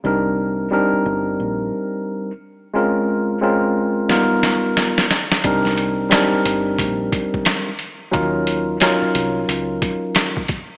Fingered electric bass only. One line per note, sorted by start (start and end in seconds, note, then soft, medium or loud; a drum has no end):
0.05 0.68 C2 loud
0.93 muted fingered electric bass stroke soft
1.06 1.37 G1 loud
1.40 1.70 A#1 medium
5.44 6.08 C2 loud
6.33 muted fingered electric bass stroke medium
6.45 6.76 G1 medium
6.79 7.09 A#1 loud
8.14 8.77 D#2 loud
9.02 muted fingered electric bass stroke soft
9.15 9.46 C2 loud
9.49 9.79 C#2 medium